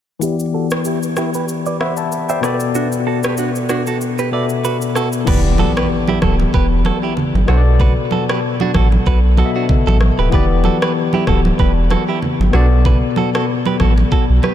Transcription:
0.19 E3 B3 G4, shaker
0.23 E4 D5
0.40 shaker
0.54 F#4 A4
0.71 G4 B4, cross-stick, shaker
0.85 E4 G4, shaker
1.03 shaker
1.16 E4 G4, cross-stick, shaker
1.34 G4 B4, shaker
1.49 shaker
1.66 B4 D5, shaker
1.80 C5 E5 F#5 B5, cross-stick
1.97 E5 A5, shaker
2.12 shaker
2.29 C5 D5 E5 G5, shaker
2.41 B2 B3 A4 B4 D5, cross-stick, shaker
2.46 D5
2.60 shaker
2.75 D4 F#4, shaker
2.92 shaker
3.07 F#4 A4
3.23 G4 B4, cross-stick, shaker
3.37 D4 F#4, shaker
3.55 shaker
3.69 D4 F#4, cross-stick, shaker
3.87 F#4 A4, shaker
4.01 shaker
4.18 G4 B4, shaker
4.31 B2 B3 A4 B4 D5 E5
4.49 shaker
4.65 F#4 B4, shaker
4.82 shaker
4.95 F#4 A4, cross-stick, shaker
5.13 shaker
5.25 E1 E3 B3 G4 B4, kick, crash, impact, low conga
5.30 D5
5.58 F#4 A4, high conga
5.77 G4 B4, cross-stick
6.08 E4 G4, high conga
6.22 D1 F#4 A4, kick, cross-stick, high conga
6.40 high conga
6.54 E1 G4 B4, kick
6.85 F#4 A4, cross-stick, high conga
7.03 E4 G4
7.17 low conga
7.34 G1, high conga
7.46 B1 B2 B3 F#4 A4, cross-stick, high conga
7.50 D4 C5
7.57 D5
7.79 F#4 B4, kick, low conga
8.11 F#4 A4, high conga
8.29 G4 B4, cross-stick
8.60 D4 F#4, high conga
8.74 A1 F#4 A4, kick, cross-stick, high conga
8.92 high conga
9.06 B1 F#4 B4, kick
9.37 B2 B3 F#4 A4 D#5, high conga
9.45 E5
9.56 D4 F#4
9.69 kick, low conga
9.87 A1 F#4 A4, high conga
10.01 cross-stick, high conga
10.18 D1 G4 B4
10.30 E1 E3 B3 G4 B4, kick, low conga
10.34 G4 D5
10.64 F#4 A4, high conga
10.82 G4 B4, cross-stick
11.13 E4 G4, high conga
11.27 D1 F#4 A4, kick, cross-stick, high conga
11.45 high conga
11.59 E1 G4 B4, kick
11.90 F#4 A4, cross-stick, high conga
12.09 E4 G4
12.22 low conga
12.39 G1, high conga
12.51 B1 B2 B3 F#4 A4, cross-stick, high conga
12.55 D4 D5
12.85 F#4 B4, kick, low conga
13.16 F#4 A4, high conga
13.35 F#4 A4, cross-stick
13.65 G4 B4, high conga
13.80 A1 F#4 A4, kick, cross-stick, high conga
13.98 high conga
14.12 F#4 A4, kick
14.29 B1
14.43 G4 B4, cross-stick, high conga

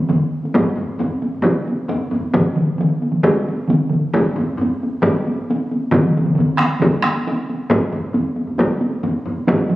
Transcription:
0.09 taiko low-mid, taiko mid, taiko high
0.43 taiko high
0.54 taiko, taiko low-mid, taiko high
0.66 taiko high
0.76 taiko low-mid, taiko high
0.88 taiko high
0.99 taiko low-mid, taiko high
1.11 taiko high
1.22 taiko high
1.34 taiko low-mid, taiko high
1.44 taiko, taiko high
1.55 taiko high
1.67 taiko high
1.89 taiko low-mid, taiko high
2.01 taiko high
2.11 taiko low-mid, taiko high
2.23 taiko high
2.34 taiko, taiko mid, taiko high
2.47 taiko high
2.56 taiko mid, taiko high
2.69 taiko high
2.78 taiko mid, taiko high
2.91 taiko high
3.03 taiko high
3.12 taiko mid, taiko high
3.23 taiko, taiko high
3.37 taiko high
3.47 taiko high
3.68 taiko mid, taiko high
3.82 taiko high
3.89 taiko mid, taiko high
4.04 taiko high
4.14 taiko, taiko high
4.27 taiko high
4.36 taiko low-mid, taiko high
4.50 taiko high
4.58 taiko low-mid, taiko high
4.73 taiko high
4.83 taiko high
4.94 taiko high
5.03 taiko, taiko low-mid, taiko high
5.16 taiko high
5.27 taiko high
5.50 taiko high
5.61 taiko high
5.72 taiko high
5.83 taiko high
5.91 taiko, taiko low-mid, taiko mid, taiko high
6.03 taiko low-mid, taiko mid, taiko high
6.13 taiko low-mid, taiko mid, taiko high
6.24 taiko low-mid, taiko mid
6.28 taiko high
6.35 taiko low-mid, taiko mid, taiko high
6.49 taiko high
6.57 taiko rim
6.59 taiko rim, taiko high
6.72 taiko high
6.80 taiko, taiko low-mid, taiko mid, taiko high
6.94 taiko high
7.02 taiko rim, taiko high
7.17 taiko high
7.27 taiko high
7.38 taiko high
7.49 taiko high
7.59 taiko high
7.70 taiko, taiko low-mid, taiko high
7.82 taiko high
7.93 taiko low-mid, taiko high
8.04 taiko high
8.14 taiko low-mid, taiko high
8.25 taiko high
8.36 taiko high
8.47 taiko low-mid, taiko high
8.58 taiko, taiko high
8.70 taiko high
8.81 taiko high
9.03 taiko low-mid, taiko high
9.15 taiko high
9.26 taiko low-mid, taiko high
9.37 taiko high
9.48 taiko, taiko mid, taiko high
9.59 taiko high
9.70 taiko mid, taiko high

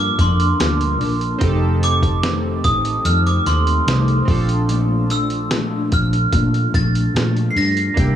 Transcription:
Already playing: G2 F3 A#3 D4 F4 A4
0.00 D6
0.17 F2 F3 A#3 D4 C6, kick, snare, closed hi-hat
0.40 closed hi-hat
0.58 D2 G2 F3 A#3 D4, snare, closed hi-hat
0.81 closed hi-hat
0.99 A#1 A#3 D4, open hi-hat
1.03 F3
1.21 closed hi-hat
1.38 F1 F2 D#3 C4 D#4 G4, kick, closed hi-hat
1.43 A3 C4 A4
1.81 A3 C4 D6, closed hi-hat
1.86 D#3
2.03 kick, closed hi-hat
2.23 F2 D#3 A3 C4, snare, closed hi-hat
2.63 A1 D#3 A3 C4 D#6, kick, closed hi-hat
2.85 closed hi-hat
3.04 F2 D#3 A3 C4 F6, closed hi-hat
3.27 D6, closed hi-hat
3.45 D#2 D#3 A3 C4 C6, snare, closed hi-hat
3.67 closed hi-hat
3.86 C2 F2 D#3 A3 C4, snare, closed hi-hat
4.08 closed hi-hat
4.25 A#1 A3 C4 D4 F4, kick, open hi-hat
4.30 F3 A4
4.49 closed hi-hat
4.68 A#2 F3 A3 D4, closed hi-hat
5.09 F3 A3 D4 E6, closed hi-hat
5.30 closed hi-hat
5.51 A#2 F3 A3 D4, snare, closed hi-hat
5.92 A#1 F3 A3 D4 F6, kick, closed hi-hat
6.13 closed hi-hat
6.32 A#2 F3 A3 D4, kick, closed hi-hat
6.54 closed hi-hat
6.73 A#1 F3 A3 D4 A6, kick, snare, closed hi-hat
6.95 closed hi-hat
7.13 A#2 F3 A3 D4, snare, closed hi-hat
7.37 closed hi-hat
7.51 D4 C7
7.56 G2 F3 A3 A#6, open hi-hat
7.77 closed hi-hat
7.94 C2 C3 G3 A#3 D4 E4, kick, closed hi-hat
7.98 E4 G4

